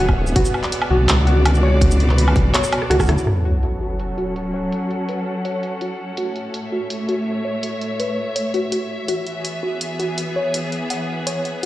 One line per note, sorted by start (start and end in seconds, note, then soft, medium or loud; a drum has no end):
0.00 0.35 D1 medium
0.00 0.36 E3 medium
0.00 4.43 B3 medium
0.00 0.10 F#4 medium
0.00 1.00 G#4 medium
0.00 1.52 E5 medium
0.09 kick medium
0.09 low woodblock soft
0.27 shaker soft
0.36 0.44 B1 loud
0.36 3.27 B2 medium
0.36 0.53 F#4 medium
0.36 kick loud
0.36 closed hi-hat medium
0.45 shaker medium
0.54 3.27 D5 medium
0.54 low woodblock soft
0.61 4.05 F#4 medium
0.61 clap soft
0.61 closed hi-hat soft
0.72 closed hi-hat medium
0.82 low woodblock medium
0.91 1.07 B1 medium
0.91 1.25 F#4 medium
1.09 2.35 C#2 loud
1.09 clap loud
1.09 closed hi-hat medium
1.27 1.61 F#4 medium
1.27 closed hi-hat soft
1.45 closed hi-hat medium
1.45 low woodblock medium
1.55 shaker soft
1.63 1.74 C#5 medium
1.81 kick loud
1.81 closed hi-hat medium
1.91 shaker medium
2.00 closed hi-hat soft
2.10 clap soft
2.18 2.35 B4 medium
2.18 closed hi-hat medium
2.28 low woodblock medium
2.36 2.53 B1 loud
2.36 kick loud
2.36 closed hi-hat soft
2.54 2.65 C#5 medium
2.54 cross-stick medium
2.54 clap loud
2.54 closed hi-hat medium
2.64 cross-stick medium
2.64 shaker medium
2.73 closed hi-hat soft
2.73 low woodblock medium
2.82 cross-stick medium
2.90 3.10 C#2 medium
2.90 3.08 F#4 loud
2.90 cross-stick medium
2.90 closed hi-hat medium
2.99 kick medium
2.99 cross-stick medium
2.99 low woodblock soft
2.99 shaker soft
3.03 shaker soft
3.06 3.17 D2 medium
3.06 3.19 E4 medium
3.06 cross-stick medium
3.06 closed hi-hat soft
3.06 shaker soft
3.18 shaker soft
3.26 6.18 F#3 medium
3.26 3.44 F#4 medium
3.26 cross-stick medium
3.26 closed hi-hat medium
3.26 sub drop medium
3.32 7.34 C#4 medium
3.32 7.34 A4 medium
3.45 closed hi-hat soft
3.57 6.67 F#5 medium
3.63 closed hi-hat medium
3.81 4.16 F#4 medium
4.00 closed hi-hat medium
4.18 4.52 F#4 medium
4.18 closed hi-hat soft
4.36 closed hi-hat medium
4.54 4.65 C#5 medium
4.72 closed hi-hat medium
4.91 closed hi-hat soft
5.09 5.26 B4 medium
5.09 closed hi-hat medium
5.45 5.55 C#5 medium
5.45 closed hi-hat medium
5.63 closed hi-hat soft
5.81 5.92 F#4 medium
5.81 closed hi-hat medium
6.17 9.09 A2 medium
6.17 6.35 F#4 medium
6.17 closed hi-hat medium
6.27 9.09 A3 medium
6.36 closed hi-hat soft
6.53 10.06 C#5 medium
6.53 closed hi-hat medium
6.66 11.65 E5 medium
6.72 7.07 F#4 medium
6.90 closed hi-hat medium
7.09 7.43 F#4 medium
7.09 closed hi-hat soft
7.45 7.55 C#5 medium
7.63 closed hi-hat medium
7.81 closed hi-hat soft
8.00 8.17 B4 medium
8.00 closed hi-hat medium
8.36 8.46 C#5 medium
8.36 closed hi-hat medium
8.54 8.71 F#4 medium
8.54 closed hi-hat soft
8.72 8.89 F#4 medium
8.72 closed hi-hat medium
9.08 11.65 E3 medium
9.08 9.26 F#4 medium
9.08 closed hi-hat medium
9.23 11.65 B3 medium
9.23 closed hi-hat soft
9.33 11.65 G#4 medium
9.45 closed hi-hat medium
9.63 9.98 F#4 medium
9.81 closed hi-hat medium
9.99 10.34 F#4 medium
9.99 closed hi-hat soft
10.18 closed hi-hat medium
10.36 10.46 C#5 medium
10.54 closed hi-hat medium
10.72 closed hi-hat soft
10.90 11.25 F#5 medium
10.90 closed hi-hat medium
11.27 11.37 C#5 medium
11.27 closed hi-hat medium
11.45 closed hi-hat soft